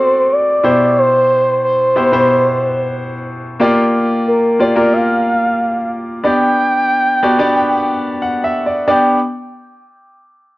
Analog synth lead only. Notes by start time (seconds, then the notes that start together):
Already playing: C5
0.32 D5
0.98 C5
1.64 C5
4.28 A#4
4.60 D5
4.93 F5
6.25 G5
8.89 G5